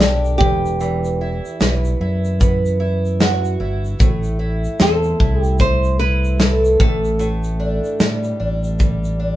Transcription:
0.00 0.36 B1 medium
0.00 0.40 G2 medium
0.00 1.61 B3 medium
0.00 0.50 D4 medium
0.00 3.20 G4 medium
0.00 0.38 A4 medium
0.00 snare loud
0.00 shaker medium
0.25 shaker medium
0.38 1.39 E1 loud
0.38 0.79 E2 medium
0.38 1.95 G4 medium
0.38 kick loud
0.65 shaker soft
0.80 4.00 E2 medium
0.80 shaker medium
1.04 shaker medium
1.21 2.00 E4 medium
1.45 shaker soft
1.61 1.93 B1 loud
1.61 2.39 B3 medium
1.61 snare loud
1.61 shaker medium
1.85 shaker medium
2.00 3.56 F#2 medium
2.00 2.79 E4 medium
2.25 shaker medium
2.40 4.10 B3 medium
2.40 kick medium
2.40 shaker medium
2.66 shaker medium
2.80 3.59 E4 medium
3.05 shaker soft
3.20 4.10 F#4 medium
3.20 snare loud
3.20 shaker medium
3.45 shaker medium
3.60 3.93 G1 medium
3.60 4.39 E4 medium
3.85 shaker soft
3.99 4.66 A1 medium
3.99 6.79 A2 medium
3.99 kick loud
3.99 shaker medium
4.23 shaker medium
4.39 5.18 E4 medium
4.64 shaker soft
4.80 5.13 E2 medium
4.80 5.59 C4 medium
4.80 5.41 A4 medium
4.80 snare loud
4.80 shaker medium
5.03 shaker medium
5.20 6.76 C2 medium
5.20 5.98 E4 medium
5.20 kick medium
5.41 5.60 G4 medium
5.41 shaker medium
5.59 6.90 C4 medium
5.59 5.97 C5 loud
5.59 kick medium
5.59 shaker medium
5.84 shaker medium
5.99 6.89 E4 medium
5.99 6.80 B4 loud
6.24 shaker soft
6.40 8.03 A4 medium
6.40 snare loud
6.40 shaker medium
6.65 shaker medium
6.80 7.78 A1 medium
6.80 7.18 A2 medium
6.80 8.36 A4 medium
6.80 kick loud
7.05 shaker medium
7.19 9.36 A2 medium
7.19 shaker medium
7.44 shaker medium
7.60 8.39 D4 medium
7.84 shaker medium
8.00 8.33 A2 medium
8.00 8.79 G3 medium
8.00 snare loud
8.00 shaker medium
8.24 shaker medium
8.40 9.36 A1 medium
8.40 9.19 D4 medium
8.64 shaker medium
8.79 9.36 G3 medium
8.79 kick medium
8.79 shaker medium
9.04 shaker medium
9.20 9.36 D4 medium

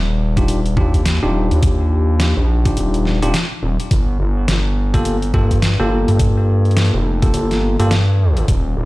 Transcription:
0.00 0.75 D#1 loud
0.37 0.59 D4 medium
0.37 0.59 D#4 medium
0.37 0.59 F4 medium
0.37 0.59 G4 medium
0.37 kick loud
0.37 closed hi-hat medium
0.48 closed hi-hat medium
0.66 closed hi-hat soft
0.77 1.20 D#2 loud
0.77 1.01 D4 medium
0.77 1.01 D#4 medium
0.77 1.01 F4 medium
0.77 1.01 G4 loud
0.77 kick loud
0.94 kick medium
0.94 closed hi-hat medium
1.06 snare loud
1.06 closed hi-hat medium
1.22 1.48 D#1 medium
1.22 2.62 D4 medium
1.22 2.61 D#4 medium
1.22 2.62 F4 medium
1.22 2.62 G4 medium
1.51 2.34 D#2 loud
1.51 closed hi-hat soft
1.63 kick loud
1.63 closed hi-hat medium
2.20 snare loud
2.20 closed hi-hat medium
2.37 2.75 A#1 loud
2.65 3.19 D4 medium
2.65 3.19 D#4 medium
2.65 3.19 F4 medium
2.65 3.19 G4 medium
2.65 kick loud
2.65 closed hi-hat medium
2.77 3.20 D#1 medium
2.77 closed hi-hat medium
2.94 closed hi-hat soft
3.05 snare soft
3.22 3.32 D#1 medium
3.22 3.34 D4 medium
3.22 3.34 D#4 medium
3.22 3.34 F4 medium
3.22 3.34 G4 loud
3.22 closed hi-hat medium
3.34 snare loud
3.34 closed hi-hat medium
3.63 3.77 D#1 medium
3.80 closed hi-hat soft
3.91 4.18 G1 loud
3.91 kick loud
3.91 closed hi-hat medium
4.20 4.46 G1 loud
4.48 5.32 G1 loud
4.48 snare loud
4.48 closed hi-hat medium
4.94 5.16 A#3 medium
4.94 5.16 F4 medium
4.94 5.16 G4 medium
4.94 5.16 A4 loud
4.94 kick loud
4.94 closed hi-hat medium
5.05 closed hi-hat medium
5.22 closed hi-hat soft
5.34 5.77 G2 loud
5.34 5.58 A#3 medium
5.34 5.58 F4 medium
5.34 5.58 G4 medium
5.34 5.58 A4 loud
5.34 kick loud
5.51 kick medium
5.51 closed hi-hat medium
5.62 snare loud
5.62 closed hi-hat medium
5.80 6.06 G1 medium
5.80 7.19 A#3 medium
5.80 7.19 F4 medium
5.80 7.19 G4 medium
5.80 7.19 A4 loud
6.08 6.91 G2 loud
6.08 closed hi-hat soft
6.19 kick loud
6.19 closed hi-hat medium
6.65 closed hi-hat soft
6.71 closed hi-hat soft
6.77 snare loud
6.77 closed hi-hat medium
6.85 closed hi-hat soft
6.94 7.32 F1 loud
7.22 7.76 A#3 medium
7.22 7.76 F4 medium
7.22 7.76 G4 medium
7.22 7.76 A4 medium
7.22 kick loud
7.22 closed hi-hat medium
7.34 7.77 G1 loud
7.34 closed hi-hat medium
7.51 snare soft
7.51 closed hi-hat soft
7.80 8.46 G2 medium
7.80 7.91 A#3 medium
7.80 7.91 F4 medium
7.80 7.91 G4 medium
7.80 7.91 A4 medium
7.80 closed hi-hat medium
7.91 snare loud
7.91 closed hi-hat medium
8.37 closed hi-hat soft
8.48 8.75 D#1 medium
8.48 8.85 G4 medium
8.48 8.85 F5 medium
8.48 8.85 D6 medium
8.48 kick loud
8.48 closed hi-hat medium
8.77 8.85 D#1 loud

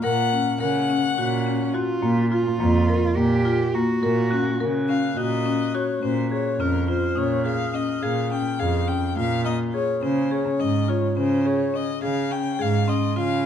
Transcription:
0.03 0.47 A#2 medium
0.03 0.19 A#4 medium
0.03 0.56 F#5 loud
0.33 0.47 C#4 medium
0.60 1.04 C#3 medium
0.60 0.75 A#4 medium
0.60 1.70 F#5 loud
0.90 1.05 C#4 medium
1.17 1.83 A#2 medium
1.17 1.75 C#4 medium
1.17 1.33 F#4 medium
1.46 1.61 C#4 medium
1.73 2.31 F4 medium
1.73 1.89 F#4 medium
2.02 2.47 A#2 medium
2.02 2.18 A#3 medium
2.32 2.47 F4 medium
2.32 3.18 F4 medium
2.60 3.04 F2 medium
2.60 2.75 A#3 medium
2.89 3.04 A#4 medium
3.16 3.83 A#2 medium
3.16 3.32 A#3 medium
3.16 3.76 G4 medium
3.45 3.60 F4 medium
3.74 3.90 A#3 medium
3.74 4.89 F#4 medium
4.02 4.46 A#2 medium
4.02 4.18 A#4 medium
4.31 4.47 C#4 medium
4.31 6.20 F#6 medium
4.60 5.04 C#3 medium
4.60 4.75 A#4 medium
4.88 5.04 C#4 medium
4.88 5.11 F5 medium
5.11 5.18 F5 medium
5.17 5.83 A#2 medium
5.17 5.32 F#4 medium
5.17 5.76 D#5 medium
5.46 5.61 C#4 medium
5.74 5.89 F#4 medium
5.74 6.03 C#5 medium
6.03 6.47 A#2 medium
6.03 6.18 C#4 medium
6.03 6.29 C5 medium
6.32 6.46 G#4 medium
6.32 6.62 C#5 medium
6.60 7.04 F2 medium
6.60 6.75 C#4 medium
6.60 6.88 A#4 medium
6.60 8.49 F6 medium
6.88 7.03 F4 medium
6.88 7.19 C5 medium
7.16 7.83 A#2 medium
7.16 7.32 C#4 medium
7.16 7.45 C#5 medium
7.16 9.05 D#6 soft
7.45 7.60 G#4 medium
7.45 7.76 F5 medium
7.74 7.89 C#4 medium
7.74 8.04 D#5 medium
8.02 8.46 A#2 medium
8.02 8.18 G#4 medium
8.02 8.31 F5 medium
8.31 8.46 C#4 medium
8.31 8.61 G5 medium
8.59 9.04 F2 medium
8.59 8.75 G#4 medium
8.59 8.89 F5 medium
8.87 9.03 C#4 medium
8.87 9.16 G5 medium
9.17 9.83 A#2 medium
9.17 9.32 F4 medium
9.17 9.44 F5 medium
9.45 9.61 A#3 medium
9.45 9.58 D#5 medium
9.74 9.89 G#4 medium
9.74 10.00 C#5 medium
10.03 10.47 C#3 medium
10.03 10.18 C#4 medium
10.03 10.33 C5 medium
10.31 10.46 G#4 medium
10.31 10.62 C#5 medium
10.60 11.04 G#2 medium
10.60 10.75 C#4 medium
10.60 10.91 D#5 medium
10.88 11.03 F4 medium
10.88 11.16 C#5 medium
11.17 11.83 C#3 medium
11.17 11.32 C#4 medium
11.17 11.48 C5 medium
11.45 11.60 G#4 medium
11.45 11.77 C#5 medium
11.74 11.89 C#4 medium
11.74 12.02 D#5 medium
12.02 12.46 C#3 medium
12.02 12.17 G#4 medium
12.02 12.33 F5 medium
12.31 12.46 C#4 medium
12.31 12.63 G5 medium
12.59 13.04 G#2 medium
12.59 12.74 G#4 medium
12.59 12.90 F5 medium
12.88 13.03 C#4 medium
12.88 13.17 D#5 medium
12.88 13.46 C6 medium
13.16 13.46 C#3 medium
13.16 13.31 F4 medium
13.16 13.46 F5 medium

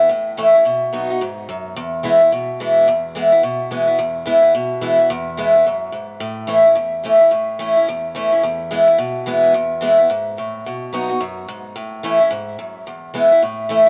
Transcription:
0.00 0.10 B3 medium
0.09 0.63 A2 medium
0.37 0.54 E3 medium
0.37 0.54 A3 medium
0.37 0.54 C#4 loud
0.37 0.54 E4 loud
0.55 0.66 C#4 medium
0.55 0.65 E4 medium
0.65 1.19 B2 medium
0.93 1.09 F#3 medium
0.93 1.10 B3 medium
0.93 1.10 D#4 medium
0.93 1.09 F#4 loud
1.10 1.21 D#4 medium
1.10 1.21 F#4 medium
1.21 1.48 G#2 medium
1.49 1.76 F#2 medium
1.76 2.30 E2 loud
2.03 2.20 E3 medium
2.03 2.21 G#3 loud
2.03 2.21 B3 loud
2.03 2.20 E4 loud
2.21 2.32 B3 soft
2.21 2.32 E4 medium
2.32 2.86 B2 medium
2.60 2.87 E3 medium
2.60 2.87 G#3 medium
2.60 2.87 B3 medium
2.60 2.87 E4 medium
2.88 3.41 E2 loud
3.15 3.32 E3 medium
3.15 3.32 G#3 loud
3.15 3.33 B3 loud
3.15 3.31 E4 medium
3.32 3.44 B3 soft
3.32 3.43 E4 medium
3.43 3.97 B2 medium
3.71 3.87 E3 medium
3.71 3.88 G#3 medium
3.71 3.88 B3 medium
3.71 3.86 E4 medium
3.87 3.99 B3 soft
3.87 3.98 E4 medium
3.99 4.52 E2 medium
4.26 4.42 E3 medium
4.26 4.43 G#3 medium
4.26 4.43 B3 medium
4.26 4.41 E4 loud
4.42 4.54 B3 medium
4.42 4.53 E4 medium
4.55 5.08 B2 loud
4.81 4.98 E3 medium
4.81 4.98 G#3 medium
4.81 4.99 B3 medium
4.81 4.98 E4 medium
4.99 5.10 B3 medium
4.99 5.10 E4 medium
5.10 5.63 E2 loud
5.37 5.54 E3 medium
5.37 5.54 G#3 loud
5.37 5.55 B3 loud
5.37 5.54 E4 loud
5.55 5.66 B3 medium
5.55 5.65 E4 medium
5.67 5.92 F#2 medium
5.92 6.19 G#2 medium
6.20 6.74 A2 loud
6.47 6.64 E3 loud
6.47 6.65 A3 medium
6.47 6.65 C#4 medium
6.47 6.65 E4 loud
6.66 6.77 C#4 medium
6.66 6.76 E4 medium
6.75 7.29 E2 medium
7.04 7.20 E3 medium
7.04 7.21 A3 medium
7.04 7.21 C#4 loud
7.04 7.20 E4 medium
7.21 7.32 C#4 soft
7.21 7.32 E4 medium
7.31 7.85 A2 loud
7.59 7.76 E3 medium
7.59 7.76 A3 loud
7.59 7.76 C#4 medium
7.59 7.76 E4 loud
7.77 7.88 C#4 medium
7.77 7.87 E4 medium
7.88 8.41 E2 loud
8.15 8.31 E3 medium
8.15 8.32 A3 medium
8.15 8.32 C#4 loud
8.15 8.31 E4 medium
8.32 8.43 C#4 medium
8.32 8.43 E4 medium
8.43 8.97 E2 loud
8.71 8.87 E3 medium
8.71 8.87 G#3 loud
8.71 8.88 B3 medium
8.71 8.86 E4 medium
8.88 8.99 B3 medium
8.88 8.98 E4 medium
8.98 9.52 B2 loud
9.26 9.53 E3 medium
9.26 9.53 G#3 medium
9.26 9.54 B3 loud
9.26 9.54 E4 medium
9.54 10.08 E2 medium
9.81 9.98 E3 medium
9.81 9.98 G#3 medium
9.81 9.98 B3 medium
9.81 9.97 E4 loud
9.99 10.10 B3 soft
9.99 10.09 E4 medium
10.10 10.36 G#2 medium
10.38 10.64 A2 medium
10.66 11.19 B2 medium
10.93 11.09 F#3 medium
10.93 11.10 B3 loud
10.93 11.10 D#4 loud
10.93 11.08 F#4 medium
11.10 11.21 D#4 medium
11.10 11.20 F#4 medium
11.21 11.47 F#2 medium
11.48 11.75 G#2 medium
11.76 12.29 A2 loud
12.03 12.20 E3 medium
12.03 12.20 A3 loud
12.03 12.21 C#4 medium
12.03 12.19 E4 loud
12.20 12.32 C#4 medium
12.20 12.31 E4 medium
12.31 12.58 G#2 medium
12.59 12.86 F#2 medium
12.87 13.40 E2 loud
13.14 13.31 E3 medium
13.14 13.31 G#3 medium
13.14 13.31 B3 medium
13.14 13.31 E4 medium
13.32 13.43 B3 soft
13.32 13.42 E4 medium
13.42 13.89 A2 medium
13.69 13.86 E3 medium
13.69 13.87 A3 loud
13.69 13.87 C#4 loud
13.69 13.85 E4 medium

